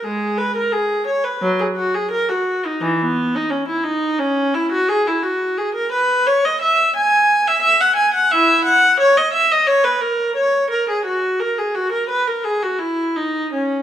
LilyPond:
\new Staff \with { instrumentName = "Viola" } { \time 4/4 \key gis \minor \tempo 4 = 87 <gis gis'>8 b'16 ais'16 gis'8 cis''16 b'16 fis16 gis'16 fis'16 gis'16 ais'16 fis'8 dis'16 | e16 b8 dis'16 cis'16 e'16 dis'8 cis'8 e'16 fis'16 gis'16 e'16 fis'8 | \key e \lydian gis'16 ais'16 b'8 cis''16 dis''16 e''8 gis''8. e''16 e''16 fis''16 gis''16 fis''16 | <e' e''>8 fis''8 cis''16 dis''16 e''16 dis''16 cis''16 b'16 ais'8 cis''8 ais'16 gis'16 |
fis'8 ais'16 gis'16 fis'16 ais'16 b'16 ais'16 gis'16 fis'16 e'8 dis'8 cis'8 | }